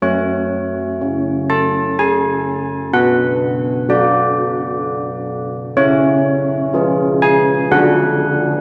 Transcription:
\new Staff \with { instrumentName = "Church bells" } { \time 3/4 \key b \dorian \tempo 4 = 63 << { cis''4. a''8 gis''4 | fis''4 d''2 | cis''4. gis''8 fis''4 | } \\ { fis4 cis'2 | b4 fis'2 | cis'4 <eis' gis'>4 <d' fis' b'>4 | } >> }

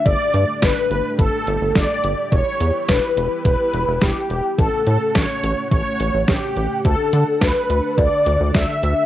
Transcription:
<<
  \new Staff \with { instrumentName = "Analog polysynth" } { \time 4/4 \key d \major \tempo 4 = 106 d''4 b'4 a'4 d''4 | cis''4 b'4 b'4 g'4 | a'8 a'8 cis''4 cis''4 g'4 | a'4 b'4 d''4 e''4 | }
  \new Staff \with { instrumentName = "String machine" } { \time 4/4 \key d \major <a d' g'>1 | <e e' b'>1 | <a cis' fis''>1 | <d d' a'>1 | }
  \new Staff \with { instrumentName = "Analog synth bass" } { \clef bass \time 4/4 \key d \major g,,16 r16 g,16 r16 g,,16 r16 g,,16 r16 g,,16 r16 g,,16 g,,16 g,,16 r16 g,,16 r16 | e,,16 r16 e,16 r16 e,,16 r16 e,,16 r16 e,,16 r16 e,,16 e,,16 e,,16 r16 e,,16 r16 | a,,16 r16 a,16 r16 a,,16 r16 a,,16 r16 a,,16 r16 a,,16 a,,16 a,,16 r16 a,,16 r16 | d,16 r16 d16 r16 d,16 r16 d,16 r16 d,16 r16 d,16 d,16 d,16 r16 d,16 r16 | }
  \new DrumStaff \with { instrumentName = "Drums" } \drummode { \time 4/4 <hh bd>8 hh8 <hh bd sn>8 hh8 <hh bd>8 hh8 <hh bd sn>8 hh8 | <hh bd>8 hh8 <hh bd sn>8 hh8 <hh bd>8 hh8 <hh bd sn>8 hh8 | <hh bd>8 hh8 <hh bd sn>8 hh8 <hh bd>8 hh8 <hh bd sn>8 hh8 | <hh bd>8 hh8 <hh bd sn>8 hh8 <hh bd>8 hh8 <hh bd sn>8 hh8 | }
>>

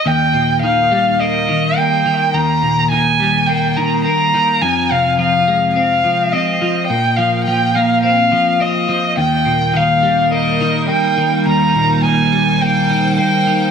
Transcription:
<<
  \new Staff \with { instrumentName = "Violin" } { \time 4/4 \key ees \major \tempo 4 = 105 g''4 f''4 ees''4 g''4 | bes''4 aes''4 g''8 bes''8 bes''4 | aes''8 f''8 f''4 f''4 ees''4 | g''8 f''8 g''8 f''8 f''4 ees''4 |
g''4 f''4 ees''4 g''4 | bes''4 aes''4 g''4 g''4 | }
  \new Staff \with { instrumentName = "Ambient pad" } { \time 4/4 \key ees \major << { r1 | r1 | r1 | r1 |
bes'1 | c''1 | } \\ { r1 | r1 | r1 | r1 |
<g ees'>1~ | <g ees'>1 | } >> }
  \new Staff \with { instrumentName = "Clean electric guitar" } { \clef bass \time 4/4 \key ees \major ees,8 bes,8 ees8 g8 bes8 ees8 bes8 ees8 | ees,8 bes,8 ees8 g8 bes8 ees8 bes8 ees8 | f,8 c8 f8 aes8 c'8 f8 c'8 f8 | bes,8 f8 f8 bes8 c'8 f8 c'8 f8 |
ees,8 bes,8 ees8 g8 bes8 ees8 bes8 ees8 | ees,8 bes,8 ees8 g8 bes8 ees8 bes8 ees8 | }
>>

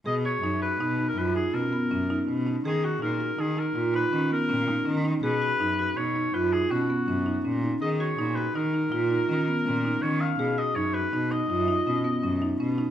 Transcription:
<<
  \new Staff \with { instrumentName = "Oboe" } { \time 7/4 \key b \lydian \tempo 4 = 163 dis''8 cis''4 b'4~ b'16 ais'16 b'8 gis'8 ais'2 r4 | gis'8 fis'8 ais'4 gis'8 ais'4 b'4 ais'2 r8 | b'2 cis''4 b'8 gis'8 fis'2 r4 | dis''8 cis''4 b'8 ais'1 cis''8 eis''8~ |
eis''8 dis''8 cis''8 b'4 dis''2.~ dis''16 r4 r16 | }
  \new Staff \with { instrumentName = "Marimba" } { \time 7/4 \key b \lydian gis'8 fis'8 dis'8 fis'8 dis'8 dis'8 eis'8 dis'8 cis'8 b8 cis'8 dis'8 cis'8 dis'8 | gis'8 fis'8 dis'8 fis'8 dis'8 dis'8 eis'8 dis'8 cis'8 b8 cis'8 dis'8 cis'8 dis'8 | gis'8 fis'8 dis'8 fis'8 dis'8 dis'8 eis'8 dis'8 cis'8 b8 cis'8 dis'8 cis'8 dis'8 | gis'8 fis'8 dis'8 fis'8 dis'8 dis'8 eis'8 dis'8 cis'8 b8 cis'8 dis'8 cis'8 dis'8 |
gis'8 fis'8 dis'8 fis'8 dis'8 dis'8 eis'8 dis'8 cis'8 b8 cis'8 dis'8 cis'8 dis'8 | }
  \new Staff \with { instrumentName = "Cello" } { \clef bass \time 7/4 \key b \lydian b,4 fis,4 b,4 fis,4 b,8 r8 fis,4 b,4 | dis4 ais,4 dis4 ais,4 dis8 r8 ais,4 dis4 | b,4 fis,4 b,4 fis,4 b,8 r8 fis,4 ais,4 | dis4 ais,4 dis4 ais,4 dis8 r8 ais,4 dis4 |
b,4 fis,4 b,4 fis,4 b,8 r8 fis,4 b,4 | }
>>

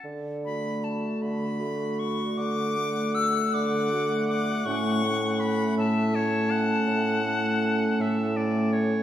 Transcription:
<<
  \new Staff \with { instrumentName = "Flute" } { \time 12/8 \key d \major \tempo 4. = 53 r8 b''8 a''8 b''4 cis'''8 d'''4 e'''8 d'''4 d'''8 | cis'''4 b''8 a''1 r8 | }
  \new Staff \with { instrumentName = "Oboe" } { \time 12/8 \key d \major r2. fis''2.~ | fis''4. e''8 cis''8 fis''2 e''8 d''8 cis''8 | }
  \new Staff \with { instrumentName = "Clarinet" } { \time 12/8 \key d \major r8 fis'4. fis'4. fis'4. fis'4 | cis'8 cis'4. cis'4. cis'4. cis'4 | }
  \new Staff \with { instrumentName = "French horn" } { \time 12/8 \key d \major r8 a4. a4. a4. a4 | a8 a4. a4. a4. a4 | }
  \new Staff \with { instrumentName = "Bassoon" } { \clef bass \time 12/8 \key d \major d4. d4. d4. d4. | a,4. a,4. a,4. a,4. | }
>>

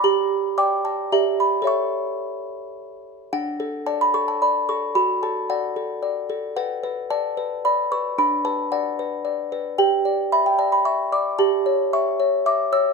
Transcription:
\new Staff \with { instrumentName = "Music box" } { \time 3/4 \key d \major \tempo 4 = 112 << { bes''4 d'''8 a''8 bes''8 b''8 | cis'''2~ cis'''8 r8 | fis''4 a''16 b''16 cis'''16 a''16 b''8 cis'''8 | b''8 a''8 fis''2 |
fis''4 a''4 b''8 cis'''8 | b''8 a''8 fis''2 | g''4 b''16 g''16 a''16 b''16 cis'''8 d'''8 | a''4 cis'''4 d'''8 e'''8 | } \\ { g'4 <d'' g''>4 <g' d'' e''>4 | <a' cis'' e''>2. | d'8 a'8 d''8 a'8 d''8 a'8 | fis'8 a'8 d''8 a'8 d''8 a'8 |
b'8 b'8 d''8 b'8 d''8 b'8 | d'8 b'8 d''8 b'8 d''8 b'8 | g'8 d''8 e''8 d''8 e''8 d''8 | g'8 cis''8 e''8 cis''8 e''8 cis''8 | } >> }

